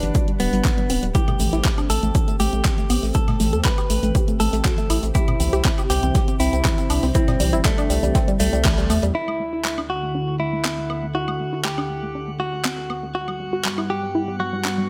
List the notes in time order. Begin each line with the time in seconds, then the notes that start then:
Already playing: G3 D4 B4 F#5
0.03 G1 G3, closed hi-hat, high conga
0.15 F#4, kick, closed hi-hat, shaker
0.28 G3, closed hi-hat
0.40 D1 G3 B3, open hi-hat, shaker
0.53 G1 G3, closed hi-hat
0.65 D4, kick, snare, clap, closed hi-hat, high conga, shaker
0.78 G3, closed hi-hat
0.90 D1 C4, open hi-hat, shaker
1.03 D1 G3, closed hi-hat
1.15 A3 C4 E4 G4, kick, closed hi-hat, shaker
1.28 A3, closed hi-hat, low conga, high woodblock
1.39 A1 A3, open hi-hat, high conga, shaker
1.53 A1 E4, snare, closed hi-hat, shaker
1.65 A3, kick, snare, clap, closed hi-hat, shaker
1.78 D4, closed hi-hat, high woodblock, shaker
1.90 A1 A3 A4, open hi-hat, shaker
2.03 A1 A3, closed hi-hat, high conga, shaker
2.15 D4, kick, closed hi-hat, shaker
2.28 A3, closed hi-hat, shaker
2.40 A1 A3 G4, open hi-hat, shaker
2.53 A1 A3, closed hi-hat, shaker
2.65 C4, kick, snare, clap, closed hi-hat, high conga, shaker
2.78 A3, closed hi-hat, shaker
2.89 A1 B3, open hi-hat, high woodblock, shaker
3.03 A1 A3, snare, open hi-hat, shaker
3.14 A4, kick, closed hi-hat, shaker
3.16 shaker
3.28 A3, snare, closed hi-hat, low conga, high woodblock
3.40 A1 A3, snare, open hi-hat, high conga, shaker
3.53 E2 A4, closed hi-hat, shaker
3.65 A3 B4, kick, snare, clap, closed hi-hat, shaker
3.78 G4, closed hi-hat, high woodblock, shaker
3.90 A1 A3, open hi-hat, shaker
4.03 A1 A3, closed hi-hat, high conga, shaker
4.15 G4, kick, closed hi-hat, shaker
4.28 A3, closed hi-hat, shaker
4.40 A1 A3 A4, open hi-hat, shaker
4.53 A1 A3, closed hi-hat, shaker
4.65 F#4, kick, snare, clap, closed hi-hat, high conga, shaker
4.78 A3, closed hi-hat, shaker
4.90 A1 E4, open hi-hat, high woodblock, shaker
5.03 A1 A3, closed hi-hat, shaker
5.15 C3 E4 G4, kick, closed hi-hat, shaker
5.28 C4, closed hi-hat, low conga, high woodblock
5.40 C2 C4, open hi-hat, high conga, shaker
5.53 C2 G4, snare, closed hi-hat, shaker
5.64 C4, kick, snare, clap, closed hi-hat, shaker
5.78 G4, closed hi-hat, high woodblock, shaker
5.90 C2 C4 G4, snare, open hi-hat, shaker
6.03 C2 C4, closed hi-hat, high conga, shaker
6.14 G4, kick, snare, closed hi-hat, shaker
6.28 C4, closed hi-hat, shaker
6.40 C2 C4 E4, open hi-hat, shaker
6.53 C2 C4, closed hi-hat, shaker
6.65 E4, kick, snare, clap, closed hi-hat, high conga, shaker
6.78 C4, closed hi-hat, shaker
6.90 C2 D4, open hi-hat, high woodblock, shaker
7.03 C2 C4, snare, open hi-hat, shaker
7.15 C4 E4, kick, closed hi-hat, shaker
7.28 G3, snare, closed hi-hat, low conga, high woodblock, shaker
7.40 C2 G3, snare, open hi-hat, high conga, shaker
7.53 G1 E4, closed hi-hat, shaker
7.65 G3 A3, kick, snare, clap, closed hi-hat, shaker
7.78 D4, closed hi-hat, high woodblock, shaker
7.90 C2 G3, open hi-hat, shaker
8.03 C2 G3, closed hi-hat, high conga, shaker
8.15 C4, kick, snare, closed hi-hat, shaker
8.28 G3, closed hi-hat, shaker
8.40 C2 G3 A3, snare, open hi-hat, shaker
8.53 C2 G3, closed hi-hat, shaker
8.64 A3, kick, snare, clap, closed hi-hat, high conga, shaker
8.78 G3, closed hi-hat, shaker
8.90 E2 A3, open hi-hat, high woodblock, shaker
9.02 E2 G3, closed hi-hat, shaker
9.15 D2 D3 E4 A4 F#5 F#6
9.28 A3, high woodblock
9.40 A3
9.53 E4
9.65 A3, clap
9.78 D4, high woodblock
9.90 A3 F#4
10.03 A3
10.15 D4
10.28 A3
10.40 A3 E4
10.53 A3
10.65 C4, clap
10.78 A3
10.90 B3, high woodblock
11.03 A3
11.15 E4 F#4
11.28 A3, high woodblock
11.40 A3
11.53 E4
11.65 A3 G4, clap
11.78 D4, high woodblock
11.90 A3
12.03 A3
12.15 D4
12.28 A3
12.40 A3 F#4
12.53 A3
12.65 C4, clap
12.78 A3
12.90 B3, high woodblock
13.03 A3
13.15 G2 G3 B3 F#4 F#5
13.28 G3, high woodblock
13.40 G3
13.53 F#4
13.65 G3, clap
13.78 E4, high woodblock
13.90 G3 G4
14.03 G3
14.15 E4
14.28 G3
14.40 G3 F#4
14.53 G3
14.65 D4, clap
14.78 G3